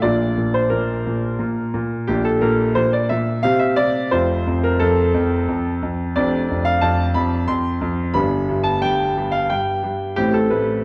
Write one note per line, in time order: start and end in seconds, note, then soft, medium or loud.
0.02 0.35 A#1 soft
0.02 0.35 A#2 medium
0.02 2.04 D4 soft
0.02 2.05 F4 soft
0.02 0.53 D5 medium
0.37 0.70 A#2 soft
0.54 0.71 C5 medium
0.70 1.04 A#2 medium
0.70 1.73 A#4 medium
1.07 1.38 A#2 soft
1.39 1.72 A#2 medium
1.74 2.07 A#2 medium
2.07 2.42 A#1 soft
2.07 2.41 A#2 medium
2.07 3.41 D4 soft
2.07 2.25 G4 medium
2.25 2.42 A4 medium
2.41 2.75 A#2 medium
2.41 2.76 A#4 medium
2.75 3.09 A#2 medium
2.75 2.93 C5 medium
2.93 3.10 D5 medium
3.09 3.44 A#2 medium
3.09 3.44 E5 medium
3.43 3.76 C3 medium
3.43 4.08 C4 soft
3.43 4.09 G4 soft
3.43 3.61 F5 medium
3.59 3.78 E5 medium
3.76 4.11 C3 medium
3.76 4.12 D5 medium
4.11 4.45 F1 soft
4.11 4.45 F2 medium
4.11 6.12 C4 soft
4.11 6.12 F4 soft
4.11 4.63 C5 medium
4.47 4.79 F2 medium
4.64 4.81 A#4 medium
4.79 5.13 F2 medium
4.79 5.82 A4 medium
5.14 5.47 F2 medium
5.48 5.81 F2 medium
5.82 6.15 F2 medium
6.16 6.49 F1 medium
6.16 6.49 F2 medium
6.16 8.13 C4 soft
6.16 8.13 D4 soft
6.16 6.66 D5 medium
6.50 6.80 F2 medium
6.65 6.82 F5 medium
6.81 7.14 F2 medium
6.81 7.15 A5 medium
7.15 7.47 F2 medium
7.15 7.49 B5 medium
7.48 7.80 F2 medium
7.48 8.15 C6 medium
7.81 8.15 F2 medium
8.14 8.48 G1 medium
8.14 8.47 G2 medium
8.14 10.13 B3 soft
8.14 10.13 D4 soft
8.14 8.66 B5 medium
8.49 8.81 G2 medium
8.63 8.82 A5 medium
8.82 9.15 G2 medium
8.82 9.33 G5 medium
9.17 9.48 G2 medium
9.31 9.50 F5 medium
9.49 9.81 G2 medium
9.49 10.17 G5 medium
9.83 10.16 G2 medium
10.16 10.51 A1 medium
10.16 10.49 A2 medium
10.16 10.84 C4 soft
10.16 10.34 G4 medium
10.33 10.51 A4 medium
10.50 10.84 A2 medium
10.50 10.84 B4 medium